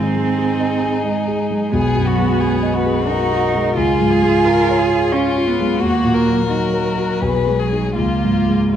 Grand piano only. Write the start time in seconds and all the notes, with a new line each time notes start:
Already playing: G#2 D#3
0.15 G#3
0.38 G#4
0.60 D#5
0.82 G#4
1.05 D#5
1.27 G#4
1.51 G#3
1.73 B1
1.96 F#2
2.18 G#3
2.40 F#4
2.63 D#5
2.86 G#4
3.09 D#5
3.32 F#4
3.54 G#3
3.77 C#2
4.00 G#2
4.23 G#3
4.46 F4
4.69 C#5
4.91 G#4
5.13 C#5
5.36 F4
5.59 G#3
5.82 D#2
6.04 A#2
6.27 F#3
6.49 D#4
6.73 A#4
6.97 F#4
7.22 B1
7.47 G#3
7.72 D#4 G#4
7.98 C#2
8.24 G#2
8.48 G#3
8.73 F4